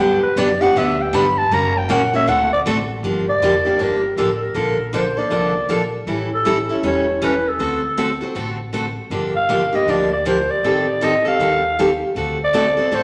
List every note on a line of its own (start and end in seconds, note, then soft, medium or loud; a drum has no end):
0.00 0.20 G2 loud
0.00 0.20 D3 medium
0.00 0.20 F#3 medium
0.00 0.20 B3 medium
0.00 0.21 D4 medium
0.00 0.21 G4 medium
0.00 0.23 G5 loud
0.22 0.39 B4 medium
0.22 muted upright bass stroke soft
0.36 0.73 F#2 loud
0.36 0.48 D3 medium
0.36 0.48 F#3 loud
0.36 0.49 B3 loud
0.36 0.49 D4 loud
0.36 0.49 G4 loud
0.36 0.63 D5 loud
0.61 0.76 B3 medium
0.61 0.75 D4 medium
0.61 0.74 G4 medium
0.61 0.79 F#5 loud
0.75 1.12 D2 medium
0.75 0.97 D3 medium
0.75 0.97 F#3 medium
0.75 0.97 B3 medium
0.75 0.97 D4 medium
0.75 0.97 G4 medium
0.75 1.03 E5 loud
1.02 1.17 G5 loud
1.13 1.50 G1 loud
1.13 1.24 D3 loud
1.13 1.24 F#3 medium
1.13 1.25 B3 loud
1.13 1.25 D4 loud
1.13 1.25 G4 loud
1.13 1.40 B5 loud
1.38 1.55 A5 loud
1.51 1.88 F#1 loud
1.51 1.72 C#3 medium
1.51 1.72 F#3 medium
1.51 1.73 A#3 medium
1.51 1.73 C#4 medium
1.51 1.73 F#4 medium
1.51 1.79 A#5 loud
1.77 1.93 G5 loud
1.89 2.26 A#1 loud
1.89 2.00 C#3 medium
1.89 2.00 F#3 loud
1.89 2.00 A#3 loud
1.89 2.01 C#4 loud
1.89 2.01 F#4 loud
1.89 2.14 F#5 medium
2.14 2.28 A#3 medium
2.14 2.27 C#4 medium
2.14 2.27 F#4 medium
2.14 2.30 E5 loud
2.26 2.63 D2 medium
2.26 2.48 D3 medium
2.26 2.48 A3 medium
2.26 2.49 C4 medium
2.26 2.49 F#4 medium
2.26 2.49 A4 medium
2.26 2.51 F#5 loud
2.53 2.61 D5 loud
2.65 3.02 A1 loud
2.65 2.76 D3 medium
2.65 2.77 A3 loud
2.65 2.77 C4 loud
2.65 2.77 F#4 loud
2.65 2.77 A4 loud
3.03 3.33 G1 medium
3.03 3.25 D3 medium
3.03 3.25 F3 medium
3.03 3.25 A#3 medium
3.03 3.25 D4 medium
3.03 3.25 G4 medium
3.29 3.84 D5 loud
3.40 3.72 F1 medium
3.40 3.53 D3 medium
3.40 3.53 F3 medium
3.40 3.53 A#3 medium
3.40 3.53 D4 medium
3.40 3.53 G4 loud
3.65 3.78 A#3 soft
3.65 3.79 D4 medium
3.65 3.78 G4 medium
3.78 4.11 G1 medium
3.78 4.00 D3 medium
3.78 4.00 F3 medium
3.78 4.00 A#3 medium
3.78 4.01 D4 medium
3.78 4.01 G4 medium
3.82 4.17 A#4 loud
4.16 4.49 A1 medium
4.16 4.28 D3 medium
4.16 4.29 F3 medium
4.16 4.29 A#3 medium
4.16 4.29 D4 medium
4.16 4.29 G4 medium
4.16 4.34 A4 medium
4.34 4.44 A4 medium
4.43 4.94 A#4 medium
4.54 5.15 A#1 medium
4.54 4.76 D3 medium
4.54 4.76 F3 medium
4.54 4.76 A#3 medium
4.54 4.77 D4 medium
4.54 4.77 A4 medium
4.93 5.04 D3 medium
4.93 5.05 F3 medium
4.93 5.05 A#3 medium
4.93 5.05 D4 medium
4.93 5.05 A4 medium
4.93 5.19 C5 medium
5.17 5.30 A#3 soft
5.17 5.31 D4 soft
5.17 5.30 A4 medium
5.17 5.93 D5 loud
5.30 5.63 C2 medium
5.30 5.52 D3 medium
5.30 5.52 F3 medium
5.30 5.53 A#3 medium
5.30 5.53 D4 medium
5.30 5.53 A4 medium
5.69 6.01 A#1 medium
5.69 5.80 D3 medium
5.69 5.80 F3 medium
5.69 5.81 A#3 medium
5.69 5.81 D4 loud
5.69 5.81 A4 medium
6.07 6.68 A1 medium
6.07 6.28 E3 medium
6.07 6.29 G3 medium
6.07 6.29 C#4 medium
6.07 6.29 E4 medium
6.07 6.29 A4 medium
6.34 6.68 A4 medium
6.45 6.56 E3 medium
6.45 6.57 G3 medium
6.45 6.57 C#4 medium
6.45 6.57 E4 medium
6.45 6.57 A4 medium
6.69 6.83 C#4 soft
6.69 6.83 E4 medium
6.69 6.83 A4 medium
6.83 7.44 E1 medium
6.83 7.04 E3 medium
6.83 7.05 G3 medium
6.83 7.05 C#4 medium
6.83 7.05 E4 medium
6.83 7.05 A4 medium
6.83 7.26 C#5 loud
7.22 7.33 E3 medium
7.22 7.33 G3 medium
7.22 7.33 C#4 loud
7.22 7.33 E4 medium
7.22 7.33 A4 medium
7.22 7.50 B4 medium
7.49 8.23 A4 medium
7.58 8.20 D2 medium
7.58 7.81 D3 medium
7.58 7.81 A3 medium
7.58 7.81 C4 medium
7.58 7.81 F#4 medium
7.58 7.81 A4 medium
7.97 8.09 D3 medium
7.97 8.09 A3 medium
7.97 8.09 C4 medium
7.97 8.09 F#4 medium
7.97 8.09 A4 loud
8.21 8.35 C4 soft
8.21 8.35 F#4 medium
8.21 8.35 A4 medium
8.35 8.96 A1 medium
8.35 8.56 D3 medium
8.35 8.57 A3 medium
8.35 8.57 C4 medium
8.35 8.57 F#4 medium
8.35 8.57 A4 medium
8.73 8.84 D3 medium
8.73 8.85 A3 medium
8.73 8.85 C4 medium
8.73 8.85 F#4 medium
8.73 8.85 A4 medium
9.10 9.71 G1 medium
9.10 9.32 D3 medium
9.10 9.32 F3 medium
9.10 9.33 A#3 medium
9.10 9.33 D4 medium
9.10 9.33 G4 medium
9.36 9.77 F5 medium
9.49 9.60 D3 medium
9.49 9.61 F3 medium
9.49 9.61 A#3 medium
9.49 9.61 D4 medium
9.49 9.61 G4 medium
9.73 9.87 A#3 medium
9.73 9.87 D4 medium
9.73 9.87 G4 medium
9.73 9.91 D#5 medium
9.86 10.47 D2 medium
9.86 10.09 D3 medium
9.86 10.09 F3 medium
9.86 10.09 A#3 medium
9.86 10.09 D4 medium
9.86 10.09 G4 medium
9.86 10.12 D5 loud
10.13 10.25 D5 medium
10.25 10.37 D3 medium
10.25 10.37 F3 medium
10.25 10.37 A#3 medium
10.25 10.37 D4 medium
10.25 10.37 G4 medium
10.25 10.52 C5 medium
10.50 11.05 D5 loud
10.63 11.24 A1 medium
10.63 10.85 D#3 medium
10.63 10.85 G3 medium
10.63 10.85 C4 medium
10.63 10.86 G4 medium
10.63 10.86 A4 medium
11.01 11.13 D#3 medium
11.01 11.13 G3 medium
11.01 11.13 C4 medium
11.01 11.13 G4 medium
11.01 11.13 A4 medium
11.01 11.26 D#5 medium
11.25 11.39 C4 soft
11.25 11.39 G4 soft
11.25 11.39 A4 medium
11.25 11.98 F5 medium
11.39 12.00 D#2 medium
11.39 11.61 D#3 medium
11.39 11.61 G3 medium
11.39 11.61 C4 medium
11.39 11.61 G4 medium
11.39 11.62 A4 medium
11.79 11.89 D#3 medium
11.79 11.89 G3 medium
11.79 11.90 C4 medium
11.79 11.90 G4 medium
11.79 11.90 A4 medium
12.15 12.76 D2 medium
12.15 12.37 D3 medium
12.15 12.37 A3 medium
12.15 12.37 C4 medium
12.15 12.37 F#4 medium
12.15 12.37 A4 medium
12.44 12.96 D5 loud
12.53 12.65 D3 medium
12.53 12.65 A3 medium
12.53 12.65 C4 loud
12.53 12.65 F#4 medium
12.53 12.65 A4 medium
12.77 12.91 C4 medium
12.77 12.91 F#4 medium
12.77 12.91 A4 medium
12.91 13.03 A1 medium
12.91 13.03 D3 medium
12.91 13.03 A3 medium
12.91 13.03 C4 medium
12.91 13.03 F#4 medium
12.91 13.03 A4 medium
12.91 13.03 C5 loud